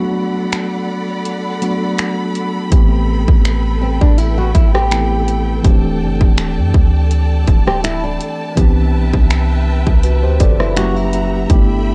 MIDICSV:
0, 0, Header, 1, 6, 480
1, 0, Start_track
1, 0, Tempo, 731707
1, 1783, Time_signature, 4, 2, 24, 8
1, 7837, End_track
2, 0, Start_track
2, 0, Title_t, "String section"
2, 0, Program_c, 0, 48
2, 0, Note_on_c, 0, 69, 76
2, 0, Note_on_c, 0, 74, 73
2, 0, Note_on_c, 0, 78, 69
2, 0, Note_on_c, 0, 83, 83
2, 1759, Note_off_c, 0, 78, 0
2, 1764, Note_off_c, 0, 74, 0
2, 1783, Note_on_c, 0, 71, 69
2, 1783, Note_on_c, 0, 79, 68
2, 3677, Note_off_c, 0, 83, 0
2, 3684, Note_off_c, 0, 71, 0
2, 3704, Note_on_c, 0, 74, 68
2, 3704, Note_on_c, 0, 81, 85
2, 5597, Note_off_c, 0, 69, 0
2, 5597, Note_off_c, 0, 79, 0
2, 5604, Note_off_c, 0, 74, 0
2, 5621, Note_on_c, 0, 71, 73
2, 5621, Note_on_c, 0, 76, 70
2, 5622, Note_on_c, 0, 79, 69
2, 7037, Note_off_c, 0, 81, 0
2, 7048, Note_off_c, 0, 71, 0
2, 7048, Note_off_c, 0, 76, 0
2, 7048, Note_off_c, 0, 79, 0
2, 7061, Note_on_c, 0, 78, 65
2, 7062, Note_on_c, 0, 67, 72
2, 7062, Note_on_c, 0, 76, 70
2, 7062, Note_on_c, 0, 82, 82
2, 7537, Note_off_c, 0, 78, 0
2, 7538, Note_off_c, 0, 67, 0
2, 7538, Note_off_c, 0, 82, 0
2, 7545, Note_on_c, 0, 79, 69
2, 7545, Note_on_c, 0, 83, 89
2, 7546, Note_on_c, 0, 69, 75
2, 7837, Note_off_c, 0, 69, 0
2, 7837, Note_off_c, 0, 76, 0
2, 7837, Note_off_c, 0, 79, 0
2, 7837, Note_off_c, 0, 83, 0
2, 7837, End_track
3, 0, Start_track
3, 0, Title_t, "Nylon-string guitar"
3, 0, Program_c, 1, 24
3, 2503, Note_on_c, 1, 60, 70
3, 2626, Note_off_c, 1, 60, 0
3, 2632, Note_on_c, 1, 62, 78
3, 2741, Note_off_c, 1, 62, 0
3, 2741, Note_on_c, 1, 64, 84
3, 2865, Note_off_c, 1, 64, 0
3, 2872, Note_on_c, 1, 66, 82
3, 2977, Note_off_c, 1, 66, 0
3, 2982, Note_on_c, 1, 64, 83
3, 3106, Note_off_c, 1, 64, 0
3, 3112, Note_on_c, 1, 67, 72
3, 3677, Note_off_c, 1, 67, 0
3, 5032, Note_on_c, 1, 67, 75
3, 5137, Note_off_c, 1, 67, 0
3, 5142, Note_on_c, 1, 64, 88
3, 5266, Note_off_c, 1, 64, 0
3, 5272, Note_on_c, 1, 62, 75
3, 5605, Note_off_c, 1, 62, 0
3, 6952, Note_on_c, 1, 64, 76
3, 7057, Note_off_c, 1, 64, 0
3, 7062, Note_on_c, 1, 66, 89
3, 7192, Note_off_c, 1, 66, 0
3, 7192, Note_on_c, 1, 64, 80
3, 7525, Note_off_c, 1, 64, 0
3, 7837, End_track
4, 0, Start_track
4, 0, Title_t, "Tine electric piano"
4, 0, Program_c, 2, 4
4, 0, Note_on_c, 2, 54, 76
4, 0, Note_on_c, 2, 57, 67
4, 0, Note_on_c, 2, 59, 62
4, 0, Note_on_c, 2, 62, 67
4, 0, Note_on_c, 2, 66, 84
4, 1, Control_c, 2, 64, 127
4, 1035, Note_off_c, 2, 54, 0
4, 1037, Note_off_c, 2, 57, 0
4, 1040, Note_off_c, 2, 59, 0
4, 1043, Note_off_c, 2, 62, 0
4, 1045, Note_off_c, 2, 66, 0
4, 1061, Note_on_c, 2, 54, 55
4, 1063, Note_on_c, 2, 57, 49
4, 1066, Note_on_c, 2, 59, 52
4, 1068, Note_on_c, 2, 62, 51
4, 1071, Note_on_c, 2, 66, 62
4, 1772, Note_off_c, 2, 57, 0
4, 1774, Note_on_c, 2, 52, 73
4, 1777, Note_off_c, 2, 59, 0
4, 1780, Note_on_c, 2, 57, 64
4, 1782, Note_off_c, 2, 54, 0
4, 1784, Note_on_c, 2, 59, 63
4, 1786, Note_off_c, 2, 62, 0
4, 1787, Note_off_c, 2, 66, 0
4, 1790, Note_on_c, 2, 60, 64
4, 1791, Control_c, 2, 64, 0
4, 1794, Note_on_c, 2, 67, 79
4, 1896, Control_c, 2, 64, 127
4, 3193, Note_off_c, 2, 52, 0
4, 3195, Note_off_c, 2, 57, 0
4, 3198, Note_off_c, 2, 59, 0
4, 3200, Note_off_c, 2, 60, 0
4, 3203, Note_off_c, 2, 67, 0
4, 3219, Note_on_c, 2, 52, 55
4, 3221, Note_on_c, 2, 57, 51
4, 3224, Note_on_c, 2, 59, 49
4, 3226, Note_on_c, 2, 60, 47
4, 3229, Note_on_c, 2, 64, 58
4, 3685, Note_off_c, 2, 52, 0
4, 3691, Note_off_c, 2, 57, 0
4, 3693, Note_on_c, 2, 52, 71
4, 3695, Note_off_c, 2, 60, 0
4, 3699, Note_on_c, 2, 57, 62
4, 3703, Note_off_c, 2, 59, 0
4, 3703, Note_on_c, 2, 60, 64
4, 3706, Note_off_c, 2, 64, 0
4, 3708, Note_on_c, 2, 62, 65
4, 3711, Control_c, 2, 64, 0
4, 3713, Note_on_c, 2, 67, 81
4, 3841, Control_c, 2, 64, 127
4, 5592, Note_off_c, 2, 52, 0
4, 5595, Note_off_c, 2, 57, 0
4, 5597, Note_off_c, 2, 60, 0
4, 5599, Note_off_c, 2, 62, 0
4, 5602, Note_off_c, 2, 67, 0
4, 5612, Note_on_c, 2, 52, 73
4, 5617, Note_on_c, 2, 59, 65
4, 5623, Note_on_c, 2, 60, 67
4, 5627, Note_on_c, 2, 62, 65
4, 5632, Note_on_c, 2, 67, 81
4, 5633, Control_c, 2, 64, 0
4, 5732, Control_c, 2, 64, 127
4, 6568, Note_off_c, 2, 67, 0
4, 6583, Note_on_c, 2, 71, 61
4, 6586, Note_on_c, 2, 66, 55
4, 6706, Note_off_c, 2, 71, 0
4, 6708, Note_off_c, 2, 66, 0
4, 6711, Note_on_c, 2, 72, 68
4, 6715, Note_on_c, 2, 67, 62
4, 6817, Note_off_c, 2, 72, 0
4, 6819, Note_off_c, 2, 67, 0
4, 6824, Note_on_c, 2, 74, 68
4, 6829, Note_on_c, 2, 69, 62
4, 6947, Note_off_c, 2, 74, 0
4, 6949, Note_off_c, 2, 69, 0
4, 6954, Note_on_c, 2, 76, 63
4, 6958, Note_on_c, 2, 71, 54
4, 7031, Note_off_c, 2, 52, 0
4, 7034, Note_off_c, 2, 59, 0
4, 7037, Note_off_c, 2, 60, 0
4, 7039, Note_off_c, 2, 62, 0
4, 7060, Note_on_c, 2, 54, 73
4, 7062, Note_on_c, 2, 57, 54
4, 7064, Note_on_c, 2, 61, 66
4, 7067, Note_on_c, 2, 64, 67
4, 7069, Note_on_c, 2, 67, 80
4, 7072, Control_c, 2, 64, 0
4, 7104, Note_on_c, 2, 58, 65
4, 7109, Note_off_c, 2, 57, 0
4, 7176, Control_c, 2, 64, 127
4, 7181, Note_off_c, 2, 76, 0
4, 7184, Note_off_c, 2, 71, 0
4, 7533, Note_on_c, 2, 57, 75
4, 7538, Note_on_c, 2, 59, 65
4, 7540, Note_off_c, 2, 64, 0
4, 7542, Note_off_c, 2, 54, 0
4, 7542, Note_on_c, 2, 62, 67
4, 7544, Note_off_c, 2, 61, 0
4, 7545, Note_off_c, 2, 67, 0
4, 7547, Note_on_c, 2, 64, 68
4, 7551, Control_c, 2, 64, 0
4, 7552, Note_on_c, 2, 67, 78
4, 7564, Note_off_c, 2, 58, 0
4, 7664, Control_c, 2, 64, 127
4, 7837, Note_off_c, 2, 57, 0
4, 7837, Note_off_c, 2, 59, 0
4, 7837, Note_off_c, 2, 62, 0
4, 7837, Note_off_c, 2, 64, 0
4, 7837, Note_off_c, 2, 67, 0
4, 7837, End_track
5, 0, Start_track
5, 0, Title_t, "808-style bass"
5, 0, Program_c, 3, 38
5, 1784, Note_on_c, 3, 33, 104
5, 2138, Note_off_c, 3, 33, 0
5, 2153, Note_on_c, 3, 33, 91
5, 2614, Note_off_c, 3, 33, 0
5, 2634, Note_on_c, 3, 33, 95
5, 2970, Note_off_c, 3, 33, 0
5, 2986, Note_on_c, 3, 33, 94
5, 3678, Note_off_c, 3, 33, 0
5, 3704, Note_on_c, 3, 26, 95
5, 3945, Note_on_c, 3, 30, 100
5, 3955, Note_off_c, 3, 26, 0
5, 4067, Note_off_c, 3, 30, 0
5, 4073, Note_on_c, 3, 26, 100
5, 4313, Note_on_c, 3, 42, 100
5, 4322, Note_off_c, 3, 26, 0
5, 4418, Note_off_c, 3, 42, 0
5, 4424, Note_on_c, 3, 38, 96
5, 4884, Note_off_c, 3, 38, 0
5, 4905, Note_on_c, 3, 26, 97
5, 5365, Note_off_c, 3, 26, 0
5, 5623, Note_on_c, 3, 36, 101
5, 5863, Note_on_c, 3, 35, 98
5, 5873, Note_off_c, 3, 36, 0
5, 5986, Note_off_c, 3, 35, 0
5, 5993, Note_on_c, 3, 36, 94
5, 6454, Note_off_c, 3, 36, 0
5, 6473, Note_on_c, 3, 36, 98
5, 6713, Note_on_c, 3, 38, 91
5, 6723, Note_off_c, 3, 36, 0
5, 6818, Note_off_c, 3, 38, 0
5, 6824, Note_on_c, 3, 30, 98
5, 7517, Note_off_c, 3, 30, 0
5, 7544, Note_on_c, 3, 31, 108
5, 7837, Note_off_c, 3, 31, 0
5, 7837, End_track
6, 0, Start_track
6, 0, Title_t, "Drums"
6, 344, Note_on_c, 9, 42, 61
6, 346, Note_on_c, 9, 26, 107
6, 410, Note_off_c, 9, 42, 0
6, 412, Note_off_c, 9, 26, 0
6, 823, Note_on_c, 9, 42, 61
6, 888, Note_off_c, 9, 42, 0
6, 1063, Note_on_c, 9, 42, 63
6, 1129, Note_off_c, 9, 42, 0
6, 1302, Note_on_c, 9, 42, 71
6, 1306, Note_on_c, 9, 26, 127
6, 1367, Note_off_c, 9, 42, 0
6, 1372, Note_off_c, 9, 26, 0
6, 1543, Note_on_c, 9, 42, 54
6, 1609, Note_off_c, 9, 42, 0
6, 1782, Note_on_c, 9, 42, 71
6, 1783, Note_on_c, 9, 36, 113
6, 1848, Note_off_c, 9, 42, 0
6, 1849, Note_off_c, 9, 36, 0
6, 2152, Note_on_c, 9, 36, 92
6, 2218, Note_off_c, 9, 36, 0
6, 2263, Note_on_c, 9, 42, 63
6, 2265, Note_on_c, 9, 26, 105
6, 2329, Note_off_c, 9, 42, 0
6, 2331, Note_off_c, 9, 26, 0
6, 2633, Note_on_c, 9, 36, 82
6, 2699, Note_off_c, 9, 36, 0
6, 2743, Note_on_c, 9, 42, 57
6, 2809, Note_off_c, 9, 42, 0
6, 2983, Note_on_c, 9, 42, 64
6, 2985, Note_on_c, 9, 36, 90
6, 3049, Note_off_c, 9, 42, 0
6, 3050, Note_off_c, 9, 36, 0
6, 3115, Note_on_c, 9, 37, 104
6, 3181, Note_off_c, 9, 37, 0
6, 3224, Note_on_c, 9, 42, 73
6, 3228, Note_on_c, 9, 26, 115
6, 3289, Note_off_c, 9, 42, 0
6, 3294, Note_off_c, 9, 26, 0
6, 3464, Note_on_c, 9, 42, 58
6, 3530, Note_off_c, 9, 42, 0
6, 3703, Note_on_c, 9, 36, 112
6, 3703, Note_on_c, 9, 42, 68
6, 3768, Note_off_c, 9, 42, 0
6, 3769, Note_off_c, 9, 36, 0
6, 4072, Note_on_c, 9, 36, 96
6, 4138, Note_off_c, 9, 36, 0
6, 4183, Note_on_c, 9, 42, 62
6, 4185, Note_on_c, 9, 26, 110
6, 4249, Note_off_c, 9, 42, 0
6, 4251, Note_off_c, 9, 26, 0
6, 4423, Note_on_c, 9, 36, 97
6, 4489, Note_off_c, 9, 36, 0
6, 4663, Note_on_c, 9, 42, 61
6, 4729, Note_off_c, 9, 42, 0
6, 4903, Note_on_c, 9, 42, 61
6, 4904, Note_on_c, 9, 36, 91
6, 4969, Note_off_c, 9, 42, 0
6, 4970, Note_off_c, 9, 36, 0
6, 5035, Note_on_c, 9, 37, 101
6, 5101, Note_off_c, 9, 37, 0
6, 5143, Note_on_c, 9, 42, 73
6, 5148, Note_on_c, 9, 26, 121
6, 5209, Note_off_c, 9, 42, 0
6, 5214, Note_off_c, 9, 26, 0
6, 5383, Note_on_c, 9, 42, 56
6, 5448, Note_off_c, 9, 42, 0
6, 5622, Note_on_c, 9, 42, 72
6, 5623, Note_on_c, 9, 36, 110
6, 5688, Note_off_c, 9, 36, 0
6, 5688, Note_off_c, 9, 42, 0
6, 5992, Note_on_c, 9, 36, 92
6, 6058, Note_off_c, 9, 36, 0
6, 6103, Note_on_c, 9, 42, 61
6, 6105, Note_on_c, 9, 26, 114
6, 6168, Note_off_c, 9, 42, 0
6, 6170, Note_off_c, 9, 26, 0
6, 6472, Note_on_c, 9, 36, 87
6, 6538, Note_off_c, 9, 36, 0
6, 6582, Note_on_c, 9, 42, 60
6, 6647, Note_off_c, 9, 42, 0
6, 6822, Note_on_c, 9, 42, 68
6, 6824, Note_on_c, 9, 36, 91
6, 6888, Note_off_c, 9, 42, 0
6, 6889, Note_off_c, 9, 36, 0
6, 6954, Note_on_c, 9, 37, 105
6, 7019, Note_off_c, 9, 37, 0
6, 7062, Note_on_c, 9, 42, 74
6, 7066, Note_on_c, 9, 26, 122
6, 7127, Note_off_c, 9, 42, 0
6, 7132, Note_off_c, 9, 26, 0
6, 7302, Note_on_c, 9, 42, 58
6, 7368, Note_off_c, 9, 42, 0
6, 7542, Note_on_c, 9, 42, 70
6, 7543, Note_on_c, 9, 36, 110
6, 7608, Note_off_c, 9, 36, 0
6, 7608, Note_off_c, 9, 42, 0
6, 7837, End_track
0, 0, End_of_file